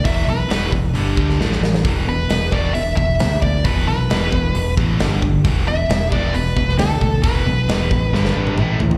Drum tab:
HH |o---o---o-------|o---o---o---o---|o---o---o---o---|o---o---o---o---|
SD |----o------ooooo|----o-------o---|----o-------o---|----o------oo---|
T1 |----------------|----------------|----------------|----------------|
T2 |----------------|----------------|----------------|----------------|
FT |----------------|----------------|----------------|----------------|
BD |o-----o---o-----|o-----o---o---o-|o-----o---o---o-|o-----o---o---o-|

HH |o---o-----------|
SD |----o---oo------|
T1 |-----------o----|
T2 |------------o---|
FT |--------------oo|
BD |o-----o---------|